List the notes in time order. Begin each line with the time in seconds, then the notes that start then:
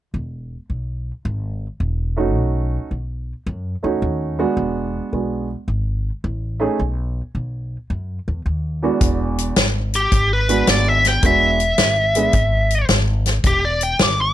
0.14 E1
0.70 B1
1.25 G#1
1.80 E1
2.17 A3 C#4 D#4 F#4
2.35 B1
2.91 B1
3.46 F#2
3.83 E2 A3 C#4 D#4 F#4
4.02 D#2
4.39 G#3 B3 D4 F#4
4.57 E1
5.12 B1 G#3 B3 D4 F#4
5.68 G#1
6.24 A1
6.60 A3 C#4 D#4 G#4
6.79 B1
7.35 B1
7.90 F#2
8.28 E2
8.46 D#2
8.83 E2 G#3 B3 D4 F#4
9.01 E1, kick, closed hi-hat
9.38 closed hi-hat
9.56 G#1, snare, closed hi-hat
9.94 G4, closed hi-hat
10.12 G#1, kick, closed hi-hat
10.33 B4
10.49 G#3 B3 D4 F#4, closed hi-hat
10.67 G#1 D5, snare, closed hi-hat
10.88 E5
11.05 G5, snare, closed hi-hat
11.23 E1 G#3 B3 D4 F#4 E5, kick, closed hi-hat
11.60 closed hi-hat
11.78 G#1, snare, closed hi-hat
12.15 G#3 B3 D4 G#4, closed hi-hat
12.33 G#1, kick, closed hi-hat
12.71 closed hi-hat
12.89 G#1, snare, closed hi-hat
13.26 snare, closed hi-hat
13.44 E1 G4, kick, closed hi-hat
13.65 D5
13.81 G5, closed hi-hat
13.99 G#1 D6, snare, closed hi-hat
14.21 D6